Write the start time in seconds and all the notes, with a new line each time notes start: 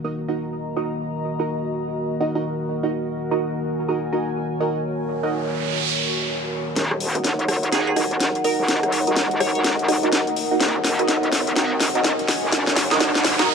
Already playing: D#3 A#3 F#4 A#4 D#5 A#5
0.04 D#4 F#4 A#4 D#5
0.28 D#4 F#4 A#4 D#5
0.76 D#4 F#4 A#4 D#5
1.39 D#4 F#4 A#4 D#5
2.20 D#4 F#4 A#4 D#5
2.35 D#4 F#4 A#4 D#5
2.83 D#4 F#4 A#4 D#5
3.31 D#4 F#4 A#4 D#5
3.44 G#5
3.88 D#4 F#4 A#4 D#5
4.12 D#4 F#4 A#4 C#5 D#5
4.60 D#4 F#4 A#4 D#5
4.84 noise sweep
5.23 D#4 F#4 A#4 D#5
6.76 D#1 D#4 A#4 F#5, snare, closed hi-hat, riser
6.91 cross-stick
7.00 open hi-hat
7.11 D#5
7.15 D#4 F#4 A#4 D#5, closed hi-hat
7.24 F#1, snare, closed hi-hat
7.39 closed hi-hat
7.48 cross-stick, open hi-hat
7.63 closed hi-hat
7.72 D#2 D#4 F#4 G#4 A#4 D#5, snare, closed hi-hat
7.80 A#5
7.87 G#4
7.96 D#1 D#4 F#4 A#4 D#5, cross-stick, open hi-hat
8.11 closed hi-hat
8.20 snare, closed hi-hat
8.35 closed hi-hat
8.44 D#4 F#4 A#4 D#5, open hi-hat
8.59 D#1
8.68 snare, closed hi-hat
8.83 F#1, cross-stick, closed hi-hat
8.92 open hi-hat
9.07 D#1 D#4 F#4 A#4 D#5, closed hi-hat
9.16 snare, closed hi-hat
9.31 closed hi-hat
9.40 C#5, cross-stick, open hi-hat
9.55 D#1 C#5, closed hi-hat
9.64 snare, closed hi-hat
9.79 D#1, closed hi-hat
9.88 D#1 D#4 F#4 A#4 D#5, cross-stick, open hi-hat
10.03 D#4 F#4 A#4 D#5, closed hi-hat
10.12 snare, closed hi-hat
10.27 closed hi-hat
10.36 open hi-hat
10.51 D#4 F#4 A#4 D#5
10.60 D#1, snare, closed hi-hat
10.84 snare, open hi-hat
10.99 D#4 F#4 A#4 D#5, closed hi-hat
11.08 F#1, snare, closed hi-hat
11.23 closed hi-hat
11.32 snare, open hi-hat
11.47 closed hi-hat
11.56 D#2, snare, closed hi-hat
11.73 G#5
11.80 D#1, snare, open hi-hat
11.95 D#4 F#4 A#4 D#5, closed hi-hat
12.04 snare, closed hi-hat
12.19 closed hi-hat
12.28 snare, open hi-hat
12.43 D#1
12.52 snare, closed hi-hat, noise sweep
12.67 F#1, snare, closed hi-hat
12.76 snare, open hi-hat
12.91 D#1 D#4 F#4 A#4 D#5, snare, closed hi-hat
13.00 snare, closed hi-hat
13.15 snare, closed hi-hat
13.24 snare, open hi-hat
13.39 D#4 F#4 A#4 D#5, snare, closed hi-hat